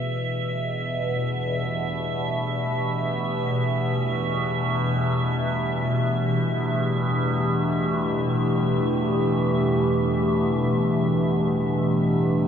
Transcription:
Already playing: E2 B2 E3 A3 D4 G4 B4 E5

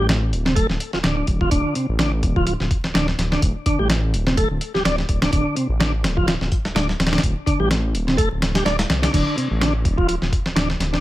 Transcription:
0.00 A1
0.09 snare, closed hi-hat
0.32 D1, closed hi-hat
0.45 C3, snare
0.56 A3, kick, closed hi-hat
0.69 D1, snare
0.80 closed hi-hat
0.93 D1 F3, snare
1.03 D1 D3, snare, closed hi-hat
1.17 D3
1.27 D1, kick, closed hi-hat
1.41 F3, kick
1.51 D1 D3, kick, closed hi-hat
1.75 C3, closed hi-hat
1.89 A1
1.99 D3, snare, closed hi-hat
2.23 D1, kick, closed hi-hat
2.36 F3, kick
2.47 F3, closed hi-hat
2.60 D1, snare
2.71 kick, closed hi-hat
2.84 D1, snare
2.94 D1 D3, snare, closed hi-hat
3.08 snare
3.18 D1, snare, closed hi-hat
3.31 D3, snare
3.42 D1, kick, closed hi-hat
3.66 D3, kick, closed hi-hat
3.79 A1 G3
3.90 snare, closed hi-hat
4.14 D1, closed hi-hat
4.27 C3, snare
4.37 A3, kick, closed hi-hat
4.51 D1
4.61 closed hi-hat
4.74 D1 G3, snare
4.85 D1 D4, snare, closed hi-hat
4.98 snare
5.09 D1, kick, closed hi-hat
5.22 D3, snare, closed hi-hat
5.32 D1 D3, kick, closed hi-hat
5.56 C3, closed hi-hat
5.69 A1
5.80 D3, snare, closed hi-hat
6.04 D1, snare, closed hi-hat
6.17 F3, kick
6.27 F3, snare, closed hi-hat
6.41 D1, snare
6.52 kick, closed hi-hat
6.65 D1, snare
6.75 D1 D3, snare, closed hi-hat
6.89 snare
6.99 D1, snare, closed hi-hat
7.07 snare, closed hi-hat
7.12 D3, snare, closed hi-hat
7.18 snare, closed hi-hat
7.23 D1, kick, closed hi-hat
7.46 D3, kick, closed hi-hat
7.60 A1 G3
7.71 snare, closed hi-hat
7.95 D1, closed hi-hat
8.07 C3, snare
8.17 A3, kick, closed hi-hat
8.31 D1
8.42 snare, closed hi-hat
8.55 G3, snare, closed hi-hat
8.65 D1 D4, snare, closed hi-hat
8.79 snare, closed hi-hat
8.90 C2, snare, closed hi-hat
9.02 D3, snare, closed hi-hat
9.13 D1 D3, kick, closed hi-hat, crash
9.37 C3, closed hi-hat
9.51 A1
9.61 D3, snare, closed hi-hat
9.85 D1, kick, closed hi-hat
9.97 F3, kick
10.08 F3, closed hi-hat
10.22 D1, snare
10.33 kick, closed hi-hat
10.46 D1, snare
10.56 D1 D3, snare, closed hi-hat
10.70 snare
10.80 D1, snare, closed hi-hat
10.93 D3, snare

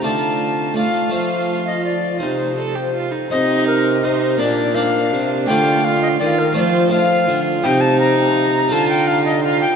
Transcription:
0.01 A3 F4 D5 A5
0.05 D3
0.74 A3 F4 D5 F5
1.09 A3 F4 C5
1.13 F3 F5
1.67 D#5
1.84 D5
2.19 C3 D#4 C5
2.56 A4
2.75 G4
2.93 F4
3.11 D#4
3.30 C3 D#4 C5 D#5
3.67 A#4
4.03 D#4 C5
4.38 A#2 A#3 D4 D5
4.74 A#3 D4 D5 F5
5.13 C3
5.46 D3 A3 F4 D5 G5
5.84 F4 F5
6.02 D#5
6.20 D#3 F4 D5
6.39 A#4
6.53 F3 A3 F4 C5 D5
6.57 F3 F4
6.61 C5
6.89 A3 F4 C5 F5
6.94 F4
7.28 D3
7.63 C3 D#4 C5 G5
7.81 A5
8.00 A#5
8.68 D3 D4 F4 A4 A5
8.72 D3
8.89 G5
9.08 F5
9.26 D#5
9.43 F4 F5
9.61 G5

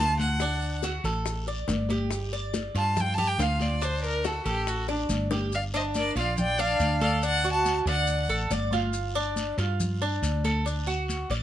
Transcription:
Already playing: D2 A5
0.00 F4
0.19 F#5, high bongo, high conga, short guiro, maracas
0.40 D4, high bongo, long guiro, maracas
0.62 high conga, maracas
0.83 F#4, high bongo, high conga, short guiro, maracas
1.04 A1 A4, high bongo, short guiro, maracas
1.25 high bongo, high conga, long guiro, maracas
1.47 D5, high bongo, high conga, maracas
1.68 G1, high bongo, low bongo, high conga, short guiro, maracas
1.89 G4, high bongo, high conga, short guiro, maracas
2.10 high bongo, high conga, long guiro, maracas
2.33 D5, high conga, maracas
2.54 high bongo, high conga, short guiro, maracas
2.75 G2 F4 A5, high bongo, high conga, short guiro, maracas
2.96 high bongo, high conga, low conga, long guiro, maracas
3.00 G5
3.14 G4 A5, high conga, low conga
3.18 high bongo, maracas
3.27 G5
3.38 D2 F4 F5, high bongo, low bongo, high conga, short guiro, maracas
3.60 D5, high bongo, high conga, short guiro, maracas
3.81 D4 C5, high bongo, long guiro, maracas
4.04 A#4, high conga, maracas
4.24 F#4 A4, high bongo, high conga, short guiro, maracas
4.45 A1 G4 A4, high bongo, short guiro, maracas
4.67 F#4, high bongo, high conga, long guiro, maracas
4.88 D4 D5, high bongo, high conga, maracas
5.09 G1, high conga, short guiro, maracas
5.31 G4, low bongo, high conga, short guiro, maracas
5.52 D5 F5, high conga, long guiro, maracas
5.74 D4 C5 D#5, high conga, maracas
5.95 A#4 D5, high conga, short guiro, maracas
6.15 A#1 F4 D5 F5, high conga, short guiro, maracas
6.38 D5 G5, high conga, low conga, long guiro, maracas
6.59 D4 D5 F5, high conga, maracas
6.80 D2, high conga, short guiro, maracas
7.01 A4 D5 F5, high conga, short guiro, maracas
7.23 D4 D5 F#5, long guiro, maracas
7.44 F#4, high conga, maracas
7.52 F#5 A5
7.65 high conga, short guiro, maracas
7.86 D2 D5 F#5, short guiro, maracas
8.07 high conga, long guiro, maracas
8.28 A1 A4, high conga, maracas
8.50 G1 D5, high conga, short guiro, maracas
8.72 F4, high conga, short guiro, maracas
8.93 long guiro, maracas
9.15 D4, high conga, maracas
9.36 high conga, short guiro, maracas
9.58 G2 F4, high conga, short guiro, maracas
9.80 high conga, low conga, long guiro, maracas
10.01 D4, high conga, maracas
10.22 D2, high conga, short guiro, maracas
10.44 A4, high conga, short guiro, maracas
10.65 D4, long guiro, maracas
10.87 F#4, high conga, maracas
11.08 high conga, short guiro, maracas
11.30 A1 D5, short guiro, maracas

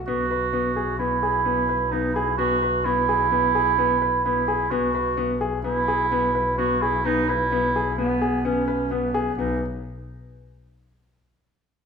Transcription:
0.06 B1 B3 F#4
0.31 B4
0.53 B3
0.76 G#4
0.99 B3 E4
1.23 G#4
1.45 B3
1.69 B4
1.91 B3 D#4
2.14 E4 G#4
2.37 B3 F#4
2.62 B4
2.85 B3 E4
3.09 G#4
3.31 B3
3.55 G#4
3.78 B3
4.02 B4
4.24 B3 E4
4.48 G#4
4.71 B1 B3 F#4
4.94 B4
5.17 B3
5.41 G#4
5.64 B3 E4
5.88 G#4
6.12 B3
6.35 B4
6.58 B3 F#4
6.82 E4 G#4
7.05 B3 D#4
7.29 E4 B4
7.52 B3
7.76 G#4
7.98 B3
8.21 G#4
8.45 B3 C#4
8.68 B4
8.91 B3
9.14 G#4
9.37 B1 B3 D#4

